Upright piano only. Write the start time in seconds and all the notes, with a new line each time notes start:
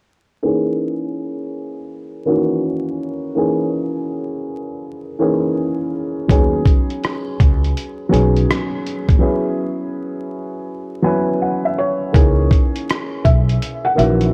0.43 E3 A#3 C#4 D#4 G#4
2.25 D#3 A#3 C#4 D#4 F#4
2.32 E3
3.35 E3 A#3 C#4 D#4 G#4
5.19 E3 A#3 C#4 D#4 G#4
6.28 F#3 B3 C#4 D#4 G#4
8.09 F#3 B3 C#4 D#4 G#4
9.19 F#3 B3 C#4 E4 G#4
11.02 F#3 B3 C#4 E4 B4 G#5
11.42 F#5
11.65 E5
12.13 E3 A#3 C#4 D#4 G#4
13.95 D#3 A#3 C#4 F#4
14.02 E3